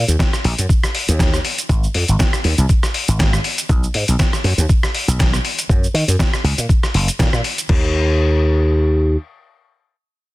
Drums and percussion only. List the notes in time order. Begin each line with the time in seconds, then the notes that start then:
0.08 closed hi-hat, cabasa
0.19 kick, snare, closed hi-hat, cabasa
0.33 cross-stick, cabasa
0.44 open hi-hat
0.58 closed hi-hat, cabasa
0.69 kick, closed hi-hat, cabasa
0.83 cross-stick, cabasa
0.95 open hi-hat
1.08 closed hi-hat, cabasa
1.19 kick, snare, closed hi-hat, cabasa
1.34 cross-stick, cabasa
1.45 open hi-hat
1.58 closed hi-hat, cabasa
1.69 kick, closed hi-hat, cabasa
1.83 cabasa
1.94 open hi-hat
2.08 closed hi-hat, cabasa
2.19 kick, snare, closed hi-hat, cabasa
2.33 cross-stick, cabasa
2.44 open hi-hat
2.58 closed hi-hat, cabasa
2.69 kick, closed hi-hat, cabasa
2.83 cross-stick, cabasa
2.94 open hi-hat
3.08 closed hi-hat, cabasa
3.19 kick, snare, closed hi-hat, cabasa
3.33 cross-stick, cabasa
3.44 open hi-hat
3.58 closed hi-hat, cabasa
3.69 kick, closed hi-hat, cabasa
3.83 cabasa
3.94 open hi-hat
4.08 closed hi-hat, cabasa
4.19 kick, snare, closed hi-hat, cabasa
4.33 cross-stick, cabasa
4.44 open hi-hat
4.58 closed hi-hat, cabasa
4.69 kick, closed hi-hat, cabasa
4.83 cross-stick, cabasa
4.95 open hi-hat
5.08 closed hi-hat, cabasa
5.19 kick, snare, closed hi-hat, cabasa
5.33 cross-stick, cabasa
5.45 open hi-hat
5.59 closed hi-hat, cabasa
5.69 kick, closed hi-hat, cabasa
5.84 cabasa
5.95 open hi-hat
6.08 closed hi-hat, cabasa
6.19 kick, snare, closed hi-hat, cabasa
6.34 cross-stick, cabasa
6.45 open hi-hat
6.58 closed hi-hat, cabasa
6.69 kick, closed hi-hat, cabasa
6.83 cross-stick, cabasa
6.94 open hi-hat
7.08 closed hi-hat, cabasa
7.19 kick, snare, closed hi-hat, cabasa
7.33 cross-stick, cabasa
7.44 open hi-hat
7.58 closed hi-hat, cabasa
7.69 kick, crash